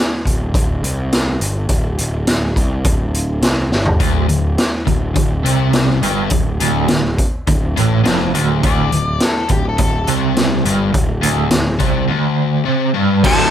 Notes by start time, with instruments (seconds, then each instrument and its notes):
0.26 picked electric bass D1, kick, closed hi-hat
0.54 picked electric bass D1, kick, closed hi-hat
0.83 picked electric bass C2, closed hi-hat
1.12 snare, closed hi-hat
1.40 picked electric bass G1, closed hi-hat
1.69 picked electric bass D1, kick, closed hi-hat
1.98 picked electric bass D1, closed hi-hat
2.27 picked electric bass D1, snare, closed hi-hat
2.56 picked electric bass C2, kick, closed hi-hat
2.84 picked electric bass D1, kick, closed hi-hat
3.14 closed hi-hat
3.42 picked electric bass C2, snare, closed hi-hat
3.71 picked electric bass G1, snare
3.86 floor tom
4.00 picked electric bass D1, overdriven electric guitar D2, kick, closed hi-hat
4.29 picked electric bass D1, overdriven electric guitar D2, closed hi-hat
4.58 snare, closed hi-hat
4.85 picked electric bass D1, overdriven electric guitar D2, kick, closed hi-hat
5.14 picked electric bass D1, overdriven electric guitar D2, kick, closed hi-hat
5.43 picked electric bass C2, overdriven electric guitar C3, closed hi-hat
5.73 snare, closed hi-hat
6.02 picked electric bass G1, overdriven electric guitar G2, closed hi-hat
6.30 picked electric bass D1, overdriven electric guitar D2, kick, closed hi-hat
6.60 picked electric bass D1, overdriven electric guitar D2, closed hi-hat
6.88 picked electric bass D1, overdriven electric guitar D2, snare, closed hi-hat
7.18 kick, closed hi-hat
7.47 picked electric bass D1, overdriven electric guitar D2, kick, closed hi-hat
7.76 picked electric bass A1, overdriven electric guitar A2, closed hi-hat
8.03 picked electric bass F1, overdriven electric guitar F2, snare, closed hi-hat
8.34 picked electric bass D1, overdriven electric guitar D2, closed hi-hat
8.63 picked electric bass D1, overdriven electric guitar D2, lead electric guitar D5, kick, closed hi-hat
8.92 picked electric bass D1, overdriven electric guitar D2, closed hi-hat
9.20 lead electric guitar A4, snare, closed hi-hat
9.49 picked electric bass D1, overdriven electric guitar D2, lead electric guitar G4, kick, closed hi-hat
9.69 lead electric guitar A4
9.78 picked electric bass D1, overdriven electric guitar D2, kick, closed hi-hat
9.83 lead electric guitar A4
10.07 picked electric bass C2, overdriven electric guitar C3, closed hi-hat
10.36 snare, closed hi-hat
10.65 picked electric bass G1, overdriven electric guitar G2, closed hi-hat
10.92 picked electric bass D1, overdriven electric guitar D2, kick, closed hi-hat
11.21 picked electric bass D1, overdriven electric guitar D2, closed hi-hat
11.51 picked electric bass D1, overdriven electric guitar D2, snare, closed hi-hat
11.79 picked electric bass C2, overdriven electric guitar C3, kick, closed hi-hat
12.07 overdriven electric guitar D2
12.65 overdriven electric guitar C3
12.94 overdriven electric guitar G2
13.24 overdriven electric guitar D2 A2 D3, picked electric bass D2, electric slide guitar A5, kick, crash